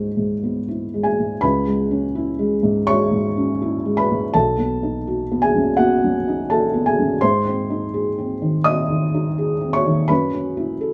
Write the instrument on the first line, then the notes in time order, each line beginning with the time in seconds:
felt piano
Already playing: C#2 G#2 G#3 B3 E4 C5 C#5
0.17 G#2
0.43 B3
0.68 E4
0.94 G#3
1.03 G#4 G#5
1.19 G#2
1.41 C#2 B4 B5
1.67 G#3
1.91 C#4
2.15 E4
2.39 G#3
2.63 G#2
2.87 G#3 C#5 C#6
3.11 G#2
3.37 C#4
3.62 E4
3.85 G#3
3.97 B4 B5
4.11 G#2
4.34 B1 A4 A5
4.58 B3
4.83 D#4
5.07 F#4
5.32 B3
5.42 G#4 G#5
5.55 F#2
5.77 B3 F#4 F#5
6.04 F#2
6.28 D#4
6.50 F#4 A4 A5
6.74 B3
6.86 G#4 G#5
6.99 F#2
7.21 G#2 C5 C6
7.45 C4
7.70 D#4
7.94 G#4
8.18 C4
8.42 D#3
8.64 C4 D#5 D#6
8.90 D#3
9.14 D#4
9.38 G#4
9.61 C4
9.73 C#5 C#6
9.86 D#3
10.08 F#2 B4 B5
10.34 C#4
10.57 E4
10.81 A4